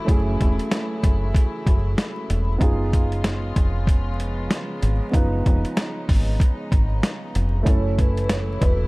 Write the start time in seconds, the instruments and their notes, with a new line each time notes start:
Already playing: string section C#3 E3 F#3 A3 E4
0.05 fingered electric bass F#1, grand piano A3 C#4 E4, kick
0.09 grand piano G#4, closed hi-hat
0.41 fingered electric bass E1, kick, closed hi-hat
0.59 closed hi-hat
0.71 snare, closed hi-hat
1.03 fingered electric bass F#1, kick, closed hi-hat
1.35 kick, closed hi-hat
1.67 fingered electric bass F#1, kick, closed hi-hat
1.98 snare, closed hi-hat
2.30 fingered electric bass E1, closed hi-hat
2.58 fingered electric bass F#1, string section C#3 F3 G#3 B3 F4, grand piano B3 D#4 F4, kick, closed hi-hat
2.64 grand piano G#4
2.93 kick, closed hi-hat
3.12 closed hi-hat
3.24 snare, closed hi-hat
3.56 fingered electric bass F1, kick, closed hi-hat
3.87 kick, closed hi-hat
4.20 closed hi-hat
4.51 snare, closed hi-hat
4.83 fingered electric bass G#1, closed hi-hat
5.11 fingered electric bass F#1, grand piano B3 D#4 F4, string section D#4, kick, closed hi-hat
5.17 grand piano B4
5.46 fingered electric bass F1, kick, closed hi-hat
5.65 closed hi-hat
5.77 snare, closed hi-hat
6.09 fingered electric bass G#1, kick, open hi-hat
6.40 kick, closed hi-hat
6.72 fingered electric bass G#1, kick, closed hi-hat
7.03 snare, closed hi-hat
7.35 fingered electric bass F1, closed hi-hat
7.63 fingered electric bass F#1, string section C#3 E3 F#3 A3 E4, grand piano A3 C#4 E4, vibraphone C#5, kick, closed hi-hat
7.68 grand piano A4
7.98 vibraphone B4, kick, closed hi-hat
8.17 closed hi-hat
8.28 vibraphone C#5, snare, closed hi-hat
8.60 fingered electric bass E1, vibraphone B4, kick, closed hi-hat